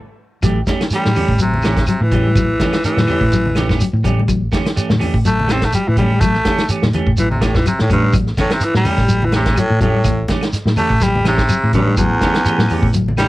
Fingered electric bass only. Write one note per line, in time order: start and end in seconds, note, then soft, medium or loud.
0.42 0.61 A1 loud
1.06 1.14 A2 medium
1.29 1.37 A2 medium
1.39 1.86 A1 loud
2.01 2.37 A2 medium
2.35 2.54 A1 loud
2.97 3.06 A2 medium
3.21 3.30 A2 medium
3.33 3.80 A1 loud
3.93 4.29 A2 medium
4.28 4.46 A1 medium
4.90 4.98 A2 medium
5.14 5.22 A2 medium
5.26 5.72 A1 loud
5.88 6.22 A2 medium
6.21 6.39 A1 loud
6.83 6.91 A2 medium
7.06 7.15 A2 medium
7.19 7.65 A1 loud
7.81 8.15 A2 medium
8.14 8.32 A1 medium
8.75 8.83 A2 medium
8.98 9.06 A2 medium
9.09 9.56 A1 loud
9.70 10.06 A2 medium
10.05 10.23 A1 loud
10.66 10.74 A2 medium
10.90 10.99 A2 medium
11.01 11.48 A1 loud
11.63 11.99 A2 medium
11.98 12.16 A1 loud
12.58 12.67 A2 medium
12.82 12.91 A2 medium
12.94 13.28 A1 loud